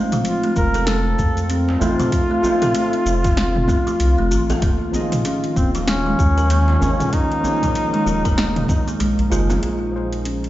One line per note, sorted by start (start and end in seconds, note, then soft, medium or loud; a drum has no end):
0.00 1.77 F3 medium
0.00 1.78 C4 medium
0.00 1.78 D#4 medium
0.00 1.79 F4 medium
0.00 1.79 C5 medium
0.00 9.64 F5 medium
0.12 0.42 F3 medium
0.12 closed hi-hat soft
0.12 mid tom medium
0.12 shaker soft
0.25 5.42 C4 medium
0.25 0.54 F4 medium
0.25 closed hi-hat medium
0.25 shaker soft
0.43 0.51 A3 medium
0.43 closed hi-hat soft
0.48 10.49 F4 medium
0.56 1.15 F1 loud
0.56 0.74 F4 medium
0.56 0.89 A#4 loud
0.56 kick loud
0.56 djembe tone soft
0.56 shaker medium
0.72 4.63 A4 medium
0.72 0.82 A4 loud
0.72 closed hi-hat soft
0.72 djembe slap medium
0.72 shaker soft
0.87 1.05 A3 medium
0.87 1.50 A4 loud
0.87 snare medium
0.87 closed hi-hat medium
0.87 shaker soft
1.19 1.77 F2 loud
1.19 kick loud
1.19 djembe tone soft
1.19 shaker medium
1.37 closed hi-hat soft
1.37 shaker soft
1.50 1.80 C4 medium
1.50 closed hi-hat medium
1.50 shaker soft
1.68 djembe slap medium
1.80 1.96 A1 medium
1.80 2.40 A3 medium
1.80 1.92 A3 medium
1.80 2.40 C4 medium
1.80 2.40 D#4 medium
1.80 4.27 F4 loud
1.80 2.41 F4 medium
1.80 2.41 C5 medium
1.80 djembe bass medium
1.80 shaker medium
2.00 2.29 F3 loud
2.00 closed hi-hat soft
2.00 mid tom medium
2.00 djembe tone medium
2.00 shaker soft
2.12 kick loud
2.12 closed hi-hat medium
2.12 shaker soft
2.31 2.38 A3 medium
2.41 4.27 A3 medium
2.41 4.28 C4 medium
2.41 4.28 D#4 medium
2.41 2.61 F4 medium
2.41 4.29 F4 medium
2.41 djembe bass medium
2.41 shaker medium
2.46 4.29 C5 medium
2.62 2.69 A4 loud
2.62 closed hi-hat soft
2.62 mid tom medium
2.62 shaker soft
2.75 2.93 A3 medium
2.75 closed hi-hat medium
2.75 shaker soft
2.93 closed hi-hat soft
3.06 3.64 F1 medium
3.06 djembe tone soft
3.06 shaker medium
3.24 kick loud
3.24 closed hi-hat soft
3.24 djembe slap medium
3.24 shaker soft
3.37 3.67 C4 medium
3.37 snare medium
3.37 closed hi-hat medium
3.37 shaker soft
3.56 mid tom medium
3.68 3.79 A3 medium
3.68 kick loud
3.68 djembe tone soft
3.68 djembe bass medium
3.68 shaker medium
3.87 4.17 F3 loud
3.87 closed hi-hat soft
3.87 shaker soft
4.00 4.15 C2 medium
4.00 closed hi-hat medium
4.00 shaker soft
4.19 4.33 F1 medium
4.19 4.26 A3 medium
4.31 4.58 A1 medium
4.31 4.49 F4 medium
4.31 shaker medium
4.50 4.57 A4 loud
4.50 closed hi-hat soft
4.50 djembe tone medium
4.50 djembe bass medium
4.50 shaker soft
4.62 4.78 D#1 loud
4.62 9.63 D#3 medium
4.62 4.80 A#3 medium
4.62 kick loud
4.62 closed hi-hat medium
4.62 shaker soft
4.91 6.77 F3 medium
4.91 6.78 A#3 medium
4.91 6.78 D#4 medium
4.91 6.79 G#4 medium
4.91 djembe bass medium
4.91 shaker medium
4.96 6.79 D#5 medium
5.12 closed hi-hat soft
5.12 mid tom medium
5.12 shaker soft
5.25 5.55 C#4 medium
5.25 closed hi-hat medium
5.25 shaker soft
5.44 closed hi-hat soft
5.55 6.15 D#1 loud
5.55 10.49 A#3 medium
5.55 5.67 A#3 medium
5.55 5.70 C4 medium
5.55 kick loud
5.55 djembe tone soft
5.55 shaker medium
5.75 6.04 F3 loud
5.75 closed hi-hat soft
5.75 djembe slap medium
5.75 shaker soft
5.88 7.15 C#4 loud
5.88 snare medium
5.88 closed hi-hat medium
5.88 shaker soft
6.06 6.13 G#3 medium
6.19 6.78 D#2 loud
6.19 6.37 F4 medium
6.19 kick loud
6.19 djembe tone soft
6.19 shaker medium
6.38 6.45 A#4 loud
6.38 closed hi-hat soft
6.38 shaker soft
6.50 6.68 A#3 medium
6.50 closed hi-hat medium
6.50 shaker soft
6.68 djembe slap medium
6.80 6.96 G#1 medium
6.80 7.40 F3 medium
6.80 7.40 A#3 medium
6.80 7.41 D#4 medium
6.80 7.41 G#4 medium
6.80 7.41 C#5 medium
6.80 djembe bass loud
6.80 shaker medium
7.00 closed hi-hat soft
7.00 mid tom medium
7.00 djembe tone medium
7.00 shaker soft
7.13 7.43 C#4 medium
7.13 9.00 D#4 loud
7.13 kick loud
7.13 closed hi-hat medium
7.13 shaker soft
7.32 closed hi-hat soft
7.41 9.27 F3 medium
7.41 9.28 A#3 medium
7.41 7.55 A#3 medium
7.41 9.28 D#4 medium
7.41 9.29 G#4 medium
7.41 9.29 C#5 medium
7.41 djembe bass medium
7.41 shaker medium
7.63 7.92 F3 loud
7.63 kick medium
7.63 closed hi-hat soft
7.63 mid tom medium
7.63 shaker soft
7.75 closed hi-hat medium
7.75 shaker soft
7.94 8.01 G#3 medium
7.94 closed hi-hat soft
8.06 8.65 D#1 loud
8.06 8.24 F4 medium
8.06 djembe tone soft
8.06 shaker medium
8.25 8.32 A#4 loud
8.25 kick loud
8.25 closed hi-hat soft
8.25 djembe slap medium
8.25 shaker soft
8.37 8.55 A#3 medium
8.37 snare medium
8.37 closed hi-hat medium
8.37 shaker soft
8.56 closed hi-hat soft
8.56 mid tom medium
8.68 kick loud
8.68 djembe slap soft
8.68 djembe tone soft
8.68 djembe bass medium
8.68 shaker medium
8.87 8.99 A#3 medium
8.87 closed hi-hat soft
8.87 shaker soft
9.00 9.15 A#1 medium
9.00 9.11 G#3 medium
9.00 closed hi-hat medium
9.00 shaker soft
9.19 9.29 A#1 medium
9.19 closed hi-hat soft
9.30 9.58 F#1 medium
9.30 9.90 F3 medium
9.30 9.90 A#3 medium
9.30 9.91 D#4 medium
9.30 9.42 F4 loud
9.30 9.91 G#4 medium
9.30 9.91 C5 medium
9.30 shaker medium
9.50 9.62 F4 loud
9.50 closed hi-hat soft
9.50 djembe slap soft
9.50 djembe tone medium
9.50 djembe bass medium
9.50 shaker soft
9.63 10.49 A#1 medium
9.63 10.49 A#2 medium
9.63 9.80 A#3 medium
9.63 closed hi-hat medium
9.89 10.49 C#3 medium
9.89 10.49 F3 medium
9.89 10.49 A#3 medium
9.94 10.49 D#4 medium
9.94 10.49 G#4 medium
9.94 10.49 C5 medium
10.13 closed hi-hat soft
10.25 10.49 C#4 medium
10.25 closed hi-hat medium
10.44 closed hi-hat soft